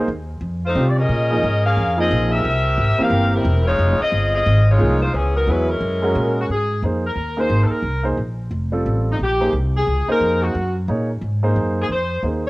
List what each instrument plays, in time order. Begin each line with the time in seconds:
0.08 upright bass D#2
0.41 upright bass F2
0.66 saxophone section A3 D#4 F4 C5
0.75 upright bass C3, grand piano G3 C4 F4 G4
0.89 saxophone section D5
0.98 saxophone section C#4 G#4 A#4 D#5
1.09 upright bass A#2
1.30 grand piano F3 A#3 D#4 G#4
1.43 upright bass G#2
1.65 saxophone section C#4 G#4 A#4 F5
1.77 upright bass F2
1.97 grand piano F3 A#3 D#4 G#4, saxophone section C4 F4 G#4 D#5
2.11 upright bass A#1
2.32 saxophone section C4 G4 A#4 E5
2.45 upright bass C2
2.78 upright bass G#1
2.98 grand piano E3 A#3 C4 G4, saxophone section C4 G4 A#4 F5, muted upright bass stroke
3.10 upright bass G1
3.36 saxophone section G3 C4 E4 A#4
3.45 upright bass E1
3.68 saxophone section G#3 D#4 F4 C#5
3.78 upright bass F1
4.00 saxophone section C4 F4 G#4 D#5, muted upright bass stroke
4.12 upright bass G1
4.35 saxophone section C4 F4 G#4 D#5
4.46 upright bass G#1
4.71 saxophone section G#3 D#4 F4 C#5
4.78 upright bass C2, grand piano F3 A#3 D#4 G#4
5.02 saxophone section G#3 D#4 F4 C5
5.14 upright bass C#2, saxophone section E3 B3 C#4 G#4
5.35 saxophone section F#3 B3 D#4 A#4
5.47 upright bass E2, grand piano F#3 B3 E4 G#4, saxophone section G#3 C#4 E4 B4
5.69 saxophone section G#3 C#4 E4 A#4
5.81 upright bass F#2
6.02 grand piano G#3 C#4 F#4 A#4
6.15 upright bass A#2
6.41 saxophone section F#4
6.49 upright bass G#2, saxophone section G#4
6.82 upright bass F2, grand piano A#3 D#4 G#4 C5
7.07 saxophone section A#4
7.16 upright bass D#2
7.37 grand piano A#3 D#4 G#4 A#4, saxophone section C5
7.50 upright bass G#1
7.64 saxophone section A4
7.71 saxophone section A#4, muted upright bass stroke
7.82 upright bass C2
8.03 grand piano A#3 D#4 G#4 C5
8.17 upright bass A#1
8.51 upright bass F1
8.72 grand piano G3 C4 F4 A4
8.86 upright bass A1
9.12 saxophone section D#4
9.19 upright bass A#1, saxophone section G4
9.41 grand piano A#3 D#4 G#4 C5
9.53 upright bass C2
9.77 saxophone section G#4
9.87 upright bass C#2
10.08 grand piano A#3 D#4 G#4 C5, saxophone section A#4, muted upright bass stroke
10.20 upright bass F2
10.42 saxophone section F#4
10.55 upright bass F#2
10.88 upright bass A#2, grand piano A#3 D#4 G#4 C#5
11.21 upright bass G#2
11.43 grand piano A#3 D#4 G#4 C5
11.56 upright bass F#2
11.82 saxophone section G#4
11.89 upright bass F2, saxophone section C5
12.23 upright bass D#2, grand piano A#3 D#4 G#4 C5